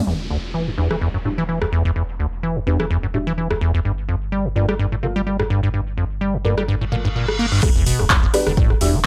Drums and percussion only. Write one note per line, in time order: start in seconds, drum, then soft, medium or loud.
0.91 cross-stick medium
1.62 cross-stick medium
2.80 cross-stick medium
3.51 cross-stick medium
4.69 cross-stick medium
5.40 cross-stick medium
6.58 cross-stick medium
7.28 cross-stick medium
7.63 kick loud
7.63 cross-stick medium
7.63 crash loud
7.86 open hi-hat loud
7.99 cross-stick soft
8.10 kick loud
8.10 clap loud
8.34 cross-stick medium
8.34 open hi-hat loud
8.47 cross-stick medium
8.57 kick loud
8.70 cross-stick soft
8.81 open hi-hat loud